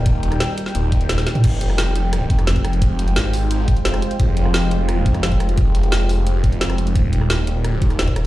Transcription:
<<
  \new Staff \with { instrumentName = "Ambient pad" } { \time 4/4 \key f \minor \tempo 4 = 174 << { g''1~ | g''1~ | g''1~ | g''1~ |
g''1 | g''1 | } \\ { <g ees' bes'>1 | <aes f' c''>1~ | <aes f' c''>1~ | <aes f' c''>1~ |
<aes f' c''>1 | <g ees' bes'>1 | } >> }
  \new Staff \with { instrumentName = "Detuned saw bass" } { \clef bass \time 4/4 \key f \minor ees,,4 r4 ees,,4. r8 | f,,4. f,,4 f,,4.~ | f,,4 aes,,4. r8 f,,8 r8 | f,,4. f,,4 f,,4.~ |
f,,4 f,,4. f,,4. | ees,,4. ees,,4 ees,,4. | }
  \new DrumStaff \with { instrumentName = "Drums" } \drummode { \time 4/4 <hh bd>8 hh16 <hh ss>16 <hh sn>8 hh16 sn16 hh8 <hh bd>16 hh16 <hh sn>16 <hh sn>16 <hh sn>16 <hh toml>16 | <cymc hh bd>8 hh16 ss16 <hh sn>8 hh8 <hh ss>8 <hh bd>16 <hh ss>16 <hh sn>16 <hh bd>16 <hh ss>16 hh16 | <hh bd>8 hh16 hh16 <hh sn>8 hho8 hh8 <hh bd>16 hh16 <hh sn>16 <hh ss>16 hh16 hh16 | <hh bd>8 hh16 ss16 <hh sn>8 hh8 <hh ss>8 <hh bd>16 <hh ss>16 <hh sn>16 <hh bd>16 <hh ss>16 hh16 |
<hh bd>8 hh16 hh16 <hh sn>8 hho8 hh8 <hh bd>16 hh16 <hh sn>16 <hh ss>16 hh16 hh16 | <hh bd>8 hh16 ss16 <hh sn>8 hh8 <hh ss>8 <hh bd>16 <hh ss>16 <hh sn>16 <hh bd>16 <hh ss>8 | }
>>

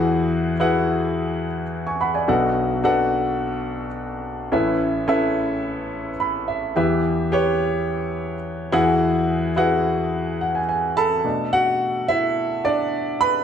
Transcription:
<<
  \new Staff \with { instrumentName = "Grand piano" } { \time 4/4 \key b \minor \tempo 4 = 107 << { r2. r16 <gis'' cis'''>16 <fis'' b''>16 <d'' gis''>16~ | <d'' gis''>16 r2. r8. | r2. b''8 e''8 | r1 |
r2 r8 fis''16 gis''16 gis''8 b''8 | r1 | } \\ { <e' fis' gis' b' fis''>4 <e' fis' gis' b' fis''>2 r4 | <d' fis' a' b' fis''>4 <d' fis' a' b' fis''>2 r4 | <cis' e' a' b' e''>4 <cis' e' a' b' e''>2 r4 | <g' b' e''>4 <g' b' cis''>2 r8 <e' fis' gis' b' fis''>8~ |
<e' fis' gis' b' fis''>4 <e' fis' gis' b' fis''>2 r8 <a' a''>8~ | <a' a''>8 <fis' fis''>4 <e' e''>4 <d' d''>4 <b' b''>8 | } >> }
  \new Staff \with { instrumentName = "Grand piano" } { \clef bass \time 4/4 \key b \minor <e, e>2.~ <e, e>8 r8 | <b,, b,>1 | <a,, a,>1 | <e, e>2.~ <e, e>8 <e, e>8~ |
<e, e>2.~ <e, e>8 r8 | <b, a d'>1 | }
>>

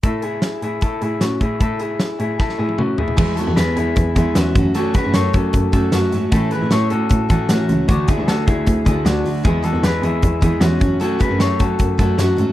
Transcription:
<<
  \new Staff \with { instrumentName = "Clean electric guitar" } { \time 4/4 \key a \major \tempo 4 = 153 <e' a'>8 <e' gis'>4 <e' gis'>8 <e' a'>8 <e' gis'>8 <cis' fis'>8 <e' gis'>8 | <e' a'>8 <e' gis'>4 <e' gis'>8 <e' a'>8 <e' gis'>8 <cis' fis'>8 <e' gis'>8 | <e' gis'>8 <fis' a'>8 <gis' b'>8 <e' gis'>4 <e' gis'>8 <cis' fis'>4 | <fis' a'>8 <gis' b'>8 <a' cis''>8 <fis' a'>4 <fis' a'>8 <cis' fis'>4 |
<e' a'>8 <gis' b'>8 <a' cis''>8 <fis' a'>4 <fis' a'>8 <cis' fis'>4 | <d' fis'>8 <e' gis'>8 <fis' a'>8 <e' gis'>4 <e' gis'>8 <d' fis'>4 | <e' gis'>8 <fis' a'>8 <gis' b'>8 <e' gis'>4 <e' gis'>8 <cis' fis'>4 | <fis' a'>8 <gis' b'>8 <a' cis''>8 <fis' a'>4 <fis' a'>8 <cis' fis'>4 | }
  \new Staff \with { instrumentName = "Steel-string acoustic guitar" } { \time 4/4 \key a \major r1 | r1 | <e gis b e'>8 <e gis b e'>16 <gis b e'>4.~ <gis b e'>16 <e gis b e'>8 <e gis b e'>8 <fis a cis' fis'>8 | <fis a cis' fis'>8 <fis a cis' fis'>16 <a cis' fis'>4.~ <a cis' fis'>16 <fis a cis' fis'>8 <fis a cis' fis'>8 <fis a cis' fis'>8 |
<a, e a cis' e'>8 <e a cis' e'>16 <a cis' e'>4.~ <a cis' e'>16 <e a cis' e'>8 <e a cis' e'>8 <e a cis' e'>8 | <d a d' fis'>8 <d a d' fis'>16 <a d' fis'>4.~ <a d' fis'>16 <d a d' fis'>8 <d a d' fis'>8 <d a d' fis'>8 | <e gis b e'>8 <e gis b e'>16 <gis b e'>4.~ <gis b e'>16 <e gis b e'>8 <e gis b e'>8 <fis a cis' fis'>8 | <fis a cis' fis'>8 <fis a cis' fis'>16 <a cis' fis'>4.~ <a cis' fis'>16 <fis a cis' fis'>8 <fis a cis' fis'>8 <fis a cis' fis'>8 | }
  \new Staff \with { instrumentName = "Cello" } { \clef bass \time 4/4 \key a \major a,4~ a,16 r16 a,8. r16 a,8 a,8 a,8 | a,4~ a,16 r16 a,8. r16 a,8 a,8 a,8 | e,8 r16 e,16 e,8 e,8 e,8 e,8 e,8 fis,8~ | fis,8 r16 fis,16 fis,8 fis,8 fis,8 fis,8 fis,8 gis,8 |
a,8 r16 a,16 a,8 a,8 a,8 a,8 a,8 cis,8 | d,8 r16 d,16 d,8 d,8 d,8 d,8 d,8 d,8 | e,8 r16 e,16 e,8 e,8 e,8 e,8 e,8 fis,8~ | fis,8 r16 fis,16 fis,8 fis,8 fis,8 fis,8 fis,8 gis,8 | }
  \new DrumStaff \with { instrumentName = "Drums" } \drummode { \time 4/4 <hh bd>8 hh8 <hh sn>8 hh8 <hh bd>8 hh8 <hh sn>8 <hh bd>8 | <hh bd>8 hh8 <hh sn>8 hh8 <bd sn>16 sn8 tommh16 toml8 tomfh16 tomfh16 | <cymc bd>8 hh8 <hh sn>8 hh8 <hh bd>8 <hh bd>8 <hh sn>8 <hh bd>8 | hh8 <hh bd>8 <hh sn>8 <hh bd>8 <hh bd>8 <hh bd>8 <hh sn>8 hh8 |
<hh bd>8 hh8 <hh sn>8 hh8 <hh bd>8 <hh bd>8 <hh sn>8 hh8 | <hh bd>8 <hh bd>8 <hh sn>8 <hh bd>8 <hh bd>8 <hh bd>8 <hh sn>8 hho8 | <hh bd>8 hh8 <hh sn>8 hh8 <hh bd>8 <hh bd>8 <hh sn>8 <hh bd>8 | hh8 <hh bd>8 <hh sn>8 <hh bd>8 <hh bd>8 <hh bd>8 <hh sn>8 hh8 | }
>>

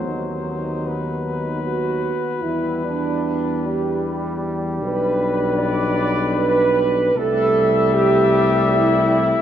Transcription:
<<
  \new Staff \with { instrumentName = "Cornet" } { \time 3/4 \key e \minor \tempo 4 = 77 c''4 b'2~ | b'2~ b'8 r8 | \key g \major b'2. | e''2. | }
  \new Staff \with { instrumentName = "French horn section" } { \time 3/4 \key e \minor dis'2 fis'4 | e'8 d'4 g'8 r4 | \key g \major b'4 d''4 b'4 | a'4 g'4 e'4 | }
  \new Staff \with { instrumentName = "Euphonium" } { \time 3/4 \key e \minor b2.~ | b2~ b8 r8 | \key g \major d'2. | a2. | }
  \new Staff \with { instrumentName = "Trombone" } { \clef bass \time 3/4 \key e \minor fis2~ fis8 r8 | g2.~ | \key g \major g2. | g2. | }
  \new Staff \with { instrumentName = "Tuba" } { \clef bass \time 3/4 \key e \minor dis,2~ dis,8 r8 | e,2. | \key g \major b,,2. | c,2. | }
>>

